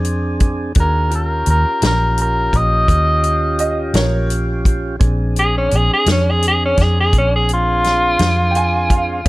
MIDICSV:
0, 0, Header, 1, 6, 480
1, 0, Start_track
1, 0, Tempo, 707547
1, 521, Time_signature, 12, 3, 24, 8
1, 6299, End_track
2, 0, Start_track
2, 0, Title_t, "Upright piano"
2, 0, Program_c, 0, 0
2, 2442, Note_on_c, 0, 75, 77
2, 2674, Note_off_c, 0, 75, 0
2, 2677, Note_on_c, 0, 70, 75
2, 2682, Note_on_c, 0, 73, 90
2, 2901, Note_off_c, 0, 70, 0
2, 2913, Note_off_c, 0, 73, 0
2, 5774, Note_on_c, 0, 79, 73
2, 5802, Note_off_c, 0, 79, 0
2, 5809, Note_on_c, 0, 80, 104
2, 6037, Note_off_c, 0, 80, 0
2, 6045, Note_on_c, 0, 77, 79
2, 6275, Note_off_c, 0, 77, 0
2, 6299, End_track
3, 0, Start_track
3, 0, Title_t, "Tenor saxophone"
3, 0, Program_c, 1, 66
3, 544, Note_on_c, 1, 70, 79
3, 765, Note_off_c, 1, 70, 0
3, 781, Note_on_c, 1, 70, 71
3, 1004, Note_off_c, 1, 70, 0
3, 1020, Note_on_c, 1, 70, 78
3, 1243, Note_off_c, 1, 70, 0
3, 1260, Note_on_c, 1, 70, 82
3, 1483, Note_off_c, 1, 70, 0
3, 1503, Note_on_c, 1, 70, 75
3, 1739, Note_on_c, 1, 75, 94
3, 1750, Note_off_c, 1, 70, 0
3, 2662, Note_off_c, 1, 75, 0
3, 3657, Note_on_c, 1, 68, 101
3, 3760, Note_off_c, 1, 68, 0
3, 3783, Note_on_c, 1, 61, 77
3, 3909, Note_on_c, 1, 68, 86
3, 3919, Note_off_c, 1, 61, 0
3, 4006, Note_off_c, 1, 68, 0
3, 4025, Note_on_c, 1, 68, 92
3, 4125, Note_off_c, 1, 68, 0
3, 4150, Note_on_c, 1, 61, 78
3, 4278, Note_on_c, 1, 68, 82
3, 4288, Note_off_c, 1, 61, 0
3, 4371, Note_off_c, 1, 68, 0
3, 4394, Note_on_c, 1, 68, 87
3, 4489, Note_off_c, 1, 68, 0
3, 4514, Note_on_c, 1, 61, 86
3, 4632, Note_on_c, 1, 68, 75
3, 4642, Note_off_c, 1, 61, 0
3, 4728, Note_off_c, 1, 68, 0
3, 4751, Note_on_c, 1, 68, 94
3, 4848, Note_off_c, 1, 68, 0
3, 4873, Note_on_c, 1, 61, 93
3, 4969, Note_off_c, 1, 61, 0
3, 4989, Note_on_c, 1, 68, 76
3, 5087, Note_off_c, 1, 68, 0
3, 5110, Note_on_c, 1, 65, 99
3, 6299, Note_off_c, 1, 65, 0
3, 6299, End_track
4, 0, Start_track
4, 0, Title_t, "Tonewheel organ"
4, 0, Program_c, 2, 16
4, 0, Note_on_c, 2, 60, 58
4, 0, Note_on_c, 2, 62, 59
4, 0, Note_on_c, 2, 68, 67
4, 491, Note_off_c, 2, 68, 0
4, 493, Note_off_c, 2, 60, 0
4, 493, Note_off_c, 2, 62, 0
4, 512, Note_on_c, 2, 66, 56
4, 514, Note_on_c, 2, 62, 58
4, 515, Note_on_c, 2, 68, 59
4, 743, Note_on_c, 2, 61, 64
4, 747, Note_on_c, 2, 65, 60
4, 748, Note_on_c, 2, 67, 63
4, 756, Note_off_c, 2, 66, 0
4, 757, Note_off_c, 2, 62, 0
4, 758, Note_off_c, 2, 68, 0
4, 3363, Note_off_c, 2, 61, 0
4, 3366, Note_off_c, 2, 65, 0
4, 3366, Note_off_c, 2, 67, 0
4, 3388, Note_on_c, 2, 60, 69
4, 3389, Note_on_c, 2, 62, 65
4, 3391, Note_on_c, 2, 68, 67
4, 6247, Note_off_c, 2, 60, 0
4, 6248, Note_off_c, 2, 62, 0
4, 6249, Note_off_c, 2, 68, 0
4, 6277, Note_on_c, 2, 69, 60
4, 6299, Note_off_c, 2, 69, 0
4, 6299, End_track
5, 0, Start_track
5, 0, Title_t, "Fingered electric bass"
5, 0, Program_c, 3, 33
5, 0, Note_on_c, 3, 41, 82
5, 492, Note_off_c, 3, 41, 0
5, 517, Note_on_c, 3, 39, 88
5, 971, Note_off_c, 3, 39, 0
5, 997, Note_on_c, 3, 39, 82
5, 1109, Note_off_c, 3, 39, 0
5, 1237, Note_on_c, 3, 34, 78
5, 1691, Note_off_c, 3, 34, 0
5, 1715, Note_on_c, 3, 34, 78
5, 1938, Note_off_c, 3, 34, 0
5, 1958, Note_on_c, 3, 39, 88
5, 2651, Note_off_c, 3, 39, 0
5, 2671, Note_on_c, 3, 34, 86
5, 3368, Note_off_c, 3, 34, 0
5, 3399, Note_on_c, 3, 34, 80
5, 3852, Note_off_c, 3, 34, 0
5, 3884, Note_on_c, 3, 34, 79
5, 3992, Note_off_c, 3, 34, 0
5, 4114, Note_on_c, 3, 41, 87
5, 4569, Note_off_c, 3, 41, 0
5, 4598, Note_on_c, 3, 41, 74
5, 4819, Note_off_c, 3, 41, 0
5, 4838, Note_on_c, 3, 34, 92
5, 5532, Note_off_c, 3, 34, 0
5, 5560, Note_on_c, 3, 41, 94
5, 6253, Note_off_c, 3, 41, 0
5, 6278, Note_on_c, 3, 34, 88
5, 6299, Note_off_c, 3, 34, 0
5, 6299, End_track
6, 0, Start_track
6, 0, Title_t, "Drums"
6, 30, Note_on_c, 9, 42, 58
6, 98, Note_off_c, 9, 42, 0
6, 272, Note_on_c, 9, 42, 59
6, 276, Note_on_c, 9, 36, 78
6, 339, Note_off_c, 9, 42, 0
6, 344, Note_off_c, 9, 36, 0
6, 507, Note_on_c, 9, 42, 75
6, 515, Note_on_c, 9, 36, 105
6, 575, Note_off_c, 9, 42, 0
6, 583, Note_off_c, 9, 36, 0
6, 755, Note_on_c, 9, 42, 50
6, 823, Note_off_c, 9, 42, 0
6, 990, Note_on_c, 9, 42, 56
6, 1058, Note_off_c, 9, 42, 0
6, 1233, Note_on_c, 9, 42, 75
6, 1244, Note_on_c, 9, 38, 103
6, 1300, Note_off_c, 9, 42, 0
6, 1311, Note_off_c, 9, 38, 0
6, 1475, Note_on_c, 9, 42, 53
6, 1543, Note_off_c, 9, 42, 0
6, 1717, Note_on_c, 9, 36, 69
6, 1719, Note_on_c, 9, 42, 52
6, 1784, Note_off_c, 9, 36, 0
6, 1787, Note_off_c, 9, 42, 0
6, 1956, Note_on_c, 9, 36, 78
6, 1958, Note_on_c, 9, 42, 79
6, 2024, Note_off_c, 9, 36, 0
6, 2025, Note_off_c, 9, 42, 0
6, 2195, Note_on_c, 9, 42, 59
6, 2262, Note_off_c, 9, 42, 0
6, 2433, Note_on_c, 9, 42, 59
6, 2501, Note_off_c, 9, 42, 0
6, 2672, Note_on_c, 9, 42, 76
6, 2682, Note_on_c, 9, 38, 101
6, 2739, Note_off_c, 9, 42, 0
6, 2750, Note_off_c, 9, 38, 0
6, 2917, Note_on_c, 9, 42, 62
6, 2985, Note_off_c, 9, 42, 0
6, 3157, Note_on_c, 9, 36, 76
6, 3159, Note_on_c, 9, 42, 60
6, 3225, Note_off_c, 9, 36, 0
6, 3227, Note_off_c, 9, 42, 0
6, 3395, Note_on_c, 9, 42, 85
6, 3397, Note_on_c, 9, 36, 104
6, 3463, Note_off_c, 9, 42, 0
6, 3465, Note_off_c, 9, 36, 0
6, 3637, Note_on_c, 9, 42, 57
6, 3705, Note_off_c, 9, 42, 0
6, 3875, Note_on_c, 9, 42, 58
6, 3943, Note_off_c, 9, 42, 0
6, 4113, Note_on_c, 9, 42, 74
6, 4124, Note_on_c, 9, 38, 103
6, 4181, Note_off_c, 9, 42, 0
6, 4192, Note_off_c, 9, 38, 0
6, 4358, Note_on_c, 9, 42, 60
6, 4426, Note_off_c, 9, 42, 0
6, 4595, Note_on_c, 9, 42, 53
6, 4598, Note_on_c, 9, 36, 67
6, 4606, Note_on_c, 9, 38, 30
6, 4663, Note_off_c, 9, 42, 0
6, 4666, Note_off_c, 9, 36, 0
6, 4674, Note_off_c, 9, 38, 0
6, 4836, Note_on_c, 9, 42, 69
6, 4837, Note_on_c, 9, 36, 78
6, 4904, Note_off_c, 9, 42, 0
6, 4905, Note_off_c, 9, 36, 0
6, 5079, Note_on_c, 9, 42, 56
6, 5147, Note_off_c, 9, 42, 0
6, 5321, Note_on_c, 9, 42, 52
6, 5331, Note_on_c, 9, 38, 29
6, 5388, Note_off_c, 9, 42, 0
6, 5399, Note_off_c, 9, 38, 0
6, 5557, Note_on_c, 9, 42, 77
6, 5567, Note_on_c, 9, 38, 102
6, 5624, Note_off_c, 9, 42, 0
6, 5635, Note_off_c, 9, 38, 0
6, 5800, Note_on_c, 9, 42, 55
6, 5867, Note_off_c, 9, 42, 0
6, 6039, Note_on_c, 9, 36, 77
6, 6039, Note_on_c, 9, 42, 60
6, 6107, Note_off_c, 9, 36, 0
6, 6107, Note_off_c, 9, 42, 0
6, 6278, Note_on_c, 9, 42, 79
6, 6299, Note_off_c, 9, 42, 0
6, 6299, End_track
0, 0, End_of_file